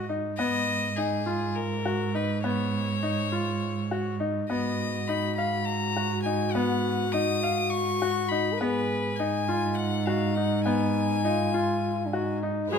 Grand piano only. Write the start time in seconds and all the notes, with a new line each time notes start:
0.09 D#4
0.39 B3
0.97 D#4
1.26 F4
1.85 F#4
2.14 D#4
2.44 B3
3.03 D#4
3.32 F4
3.91 F#4
4.20 D#4
4.50 B3
5.09 D#4
5.38 F5
5.96 F#4
6.26 D#4
6.55 B3
7.14 D#4
7.43 F5
8.02 F#4
8.31 D#4
8.61 B3
9.20 D#4
9.48 F4
10.07 F#4
10.37 D#4
10.66 B3
11.25 D#4
11.54 F4
12.13 F#4
12.43 D#4
12.72 G#4